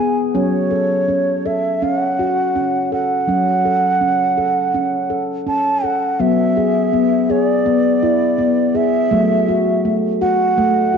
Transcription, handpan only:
0.00 0.32 E3 medium
0.00 0.35 G#4 medium
0.35 3.23 F#3 medium
0.35 0.71 C#4 medium
0.71 1.08 A4 medium
1.08 1.45 C#4 medium
1.46 1.82 A4 medium
1.82 2.18 C#4 medium
2.19 2.55 F#4 medium
2.55 2.91 C#4 medium
2.92 3.28 A4 medium
3.27 6.15 F#3 medium
3.27 3.65 C#4 medium
3.65 4.01 A4 medium
4.01 4.37 C#4 medium
4.38 4.74 A4 medium
4.74 5.10 C#4 medium
5.10 5.46 A4 medium
5.47 5.83 C#4 medium
5.84 6.20 A4 medium
6.20 9.07 F#3 medium
6.20 6.56 B3 medium
6.57 6.93 G#4 medium
6.93 7.29 B3 medium
7.30 7.66 G#4 medium
7.66 8.02 B3 medium
8.03 8.39 E4 medium
8.39 8.75 B3 medium
8.75 9.11 G#4 medium
9.11 10.97 F#3 medium
9.11 9.47 A3 medium
9.48 9.84 F#4 medium
9.85 10.21 A3 medium
10.21 10.57 F#4 medium
10.58 10.93 A3 medium
10.94 10.97 F#4 medium

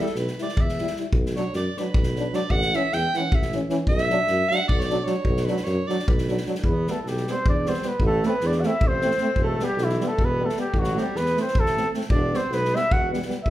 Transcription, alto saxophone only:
0.01 0.17 A4 medium
0.18 0.44 B4 medium
0.43 0.63 D5 medium
0.61 0.98 E5 medium
1.36 1.53 C#5 medium
1.56 1.80 D5 medium
1.79 2.37 B4 medium
2.35 2.52 D5 medium
2.51 2.77 F#5 loud
2.75 2.95 E5 loud
2.94 3.18 G5 loud
3.17 3.37 F#5 medium
3.35 3.55 E5 medium
3.88 4.50 E5 loud
4.49 4.68 F#5 loud
4.68 4.80 D5 loud
4.79 4.84 C#5 medium
4.79 5.06 D5 medium
5.04 5.46 C#5 loud
5.45 5.66 B4 medium
5.64 5.89 C#5 medium
5.87 6.10 D5 medium
6.08 6.46 B4 medium
6.66 6.91 B3 medium
6.89 7.00 A3 medium
7.00 7.08 A3 soft
7.06 7.30 G3 medium
7.28 7.46 C4 medium
7.47 7.69 D4 medium
7.68 7.86 C4 medium
7.84 8.01 B3 medium
8.05 8.28 A3 loud
8.27 8.48 B3 medium
8.47 8.60 D4 medium
8.59 8.69 F#4 medium
8.67 8.87 E4 medium
8.86 9.39 C4 medium
9.42 9.65 A3 medium
9.64 9.84 G3 medium
9.83 10.08 E3 medium
10.07 10.25 A3 medium
10.23 10.46 B3 medium
10.44 10.59 A3 medium
10.62 10.81 G3 medium
10.79 11.05 F#3 medium
11.03 11.22 G3 medium
11.21 11.40 B3 medium
11.44 11.62 C4 medium
11.60 11.89 A3 medium
12.12 12.37 D4 loud
12.35 12.55 C4 medium
12.53 12.79 B3 loud
12.78 12.94 E4 medium
12.93 13.12 F#4 medium
13.47 13.50 E4 medium

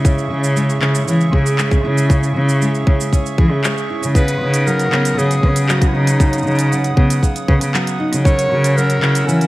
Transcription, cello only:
0.00 0.24 C#3 medium
0.30 0.75 C#3 medium
0.82 0.99 C#3 medium
1.07 1.24 E3 medium
1.33 1.77 C#3 medium
1.84 2.28 C#3 medium
2.35 2.80 C#3 medium
2.87 3.04 C#3 medium
3.38 3.52 E3 medium
3.51 3.60 C#3 medium
4.02 4.34 C#3 medium
4.40 4.85 C#3 medium
4.92 5.09 C#3 medium
5.17 5.34 C#3 medium
5.43 5.88 C#3 medium
5.94 6.39 C#3 medium
6.46 6.90 C#3 medium
6.97 7.14 C#3 medium
7.48 7.57 C#3 loud
7.61 7.70 C#3 medium
8.12 8.44 C#3 medium
8.51 8.95 C#3 medium
9.02 9.19 C#3 medium
9.27 9.45 E3 medium

